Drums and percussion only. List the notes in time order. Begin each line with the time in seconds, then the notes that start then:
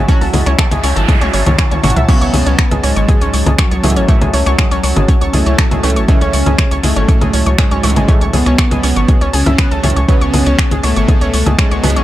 0.08 kick, closed hi-hat
0.21 open hi-hat
0.33 open hi-hat, low conga
0.46 finger snap, closed hi-hat
0.59 finger snap, kick, closed hi-hat
0.71 closed hi-hat, low conga
0.84 open hi-hat
0.96 closed hi-hat
1.09 kick, closed hi-hat, high tom, low conga
1.21 closed hi-hat, high tom
1.33 open hi-hat
1.46 closed hi-hat, mid tom, low conga
1.59 finger snap, kick, closed hi-hat, mid tom
1.71 closed hi-hat, mid tom
1.84 mid tom, open hi-hat, low conga
1.90 closed hi-hat
1.96 closed hi-hat, mid tom
2.09 kick, closed hi-hat, crash
2.21 closed hi-hat
2.34 open hi-hat, low conga
2.46 closed hi-hat
2.59 finger snap, kick, closed hi-hat
2.71 closed hi-hat, low conga
2.84 open hi-hat
2.96 closed hi-hat
3.09 kick, closed hi-hat, low conga
3.21 closed hi-hat
3.34 open hi-hat
3.46 closed hi-hat, low conga
3.58 finger snap, kick, closed hi-hat
3.71 closed hi-hat
3.84 open hi-hat, low conga
3.90 closed hi-hat
3.96 closed hi-hat
4.08 kick, closed hi-hat
4.21 closed hi-hat, low conga
4.33 open hi-hat
4.46 finger snap, closed hi-hat
4.58 finger snap, kick, closed hi-hat, low conga
4.71 closed hi-hat
4.83 open hi-hat
4.96 closed hi-hat, low conga
5.08 kick, closed hi-hat
5.21 closed hi-hat
5.33 open hi-hat, low conga
5.46 closed hi-hat
5.58 finger snap, kick, closed hi-hat
5.71 closed hi-hat, low conga
5.83 open hi-hat
5.90 closed hi-hat
5.96 closed hi-hat
6.08 kick, closed hi-hat, low conga
6.21 closed hi-hat
6.33 open hi-hat
6.46 closed hi-hat, low conga
6.58 finger snap, kick, closed hi-hat
6.71 closed hi-hat
6.83 open hi-hat, low conga
6.96 closed hi-hat
7.08 kick, closed hi-hat
7.21 closed hi-hat, low conga
7.33 open hi-hat
7.46 closed hi-hat
7.58 finger snap, kick, closed hi-hat, low conga
7.71 closed hi-hat
7.83 open hi-hat
7.90 closed hi-hat
7.96 closed hi-hat, low conga
8.08 kick, closed hi-hat
8.21 closed hi-hat
8.33 open hi-hat, low conga
8.46 finger snap, closed hi-hat
8.58 finger snap, kick, closed hi-hat
8.71 closed hi-hat, low conga
8.83 open hi-hat
8.96 closed hi-hat
9.08 kick, closed hi-hat, low conga
9.21 closed hi-hat
9.33 open hi-hat
9.46 closed hi-hat, low conga
9.58 finger snap, kick, closed hi-hat
9.71 closed hi-hat
9.84 open hi-hat, low conga
9.90 closed hi-hat
9.96 closed hi-hat
10.09 kick, closed hi-hat
10.21 closed hi-hat
10.34 open hi-hat, low conga
10.46 closed hi-hat
10.59 finger snap, kick, closed hi-hat
10.71 closed hi-hat, low conga
10.83 open hi-hat
10.96 closed hi-hat
11.08 kick, closed hi-hat, low conga
11.21 closed hi-hat
11.34 open hi-hat
11.46 closed hi-hat, low conga
11.58 finger snap, kick, closed hi-hat
11.71 closed hi-hat
11.84 open hi-hat, low conga
11.90 closed hi-hat
11.96 closed hi-hat